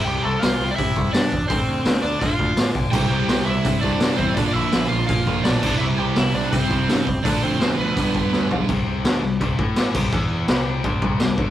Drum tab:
CC |--------|--------|x-------|-------x|
HH |--o-o-o-|o-o-o-o-|--o-o-o-|o-o-o-o-|
SD |--o---o-|--o---o-|--o---o-|--o---o-|
FT |--------|--------|--------|--------|
BD |----oo-o|o---oo-o|o---oo-o|o---oo-o|

CC |--------|--------|x-x-x-xx|x-x-x-x-|
HH |--o-o-o-|o-o-o---|--------|--------|
SD |--o---o-|--o---o-|--o---o-|--o---o-|
FT |--------|-------o|--------|--------|
BD |----oo-o|o---oo--|o---oo-o|o---oo-o|